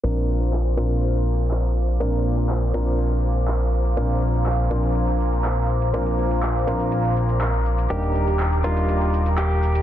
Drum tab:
HH |xx-xxx-xxx-xxx-x|xx-xxx-xxx-xxx-x|xx-xxx-xxx-xxx-x|xx-xxx-xxx-xxx-x|
SH |--x----x--xxx-xx|--xxx-xxx-xxx-xx|x-xxx-xxx-xxx-xx|x-xxx-xxx-xxx-xx|
CP |----x-------x---|----x-------x---|----x-------x---|----x-------x---|

HH |xx-xxx-xxx-xxx-x|
SH |x-xxx-xxx-xxx-xx|
CP |----x-------x---|